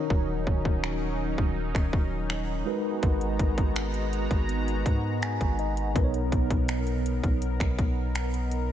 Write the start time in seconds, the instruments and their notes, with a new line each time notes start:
Already playing: tine electric piano D#3 D#4 F#4 A#4 C#5, analog synth pad F#3 C#4 D#4
0.10 808-style bass D#1, kick
0.47 808-style bass D#1, kick
0.65 kick
0.84 finger snap
1.38 808-style bass D#1, kick
1.75 808-style bass D#1, finger snap, kick
1.93 kick
2.30 finger snap
2.65 tine electric piano G#3 D#4 F#4 A#4 B4, analog synth pad G#3 B3 F#4 A#5
3.03 808-style bass G#1, kick, closed hi-hat
3.21 closed hi-hat
3.39 808-style bass G#1, kick, closed hi-hat
3.58 kick, closed hi-hat
3.76 finger snap, closed hi-hat
3.94 closed hi-hat
4.13 closed hi-hat
4.31 808-style bass G#1, kick, closed hi-hat
4.49 closed hi-hat
4.68 closed hi-hat
4.86 808-style bass G#2, kick, closed hi-hat
5.22 tine electric piano G#5, finger snap, closed hi-hat
5.41 808-style bass G#1, kick, closed hi-hat
5.59 tine electric piano D#5, closed hi-hat
5.77 closed hi-hat
5.94 808-style bass B1, tine electric piano B2 B3 D#4 A#4 B4, analog synth pad B3 A#4, kick, closed hi-hat
6.04 tine electric piano C#5
6.14 closed hi-hat
6.32 808-style bass B1, kick, closed hi-hat
6.50 kick, closed hi-hat
6.68 finger snap, closed hi-hat
6.87 closed hi-hat
7.06 closed hi-hat
7.24 808-style bass B1, kick, closed hi-hat
7.42 closed hi-hat
7.60 808-style bass B1, finger snap, kick, closed hi-hat
7.79 kick, closed hi-hat
8.15 finger snap, closed hi-hat
8.34 closed hi-hat
8.51 closed hi-hat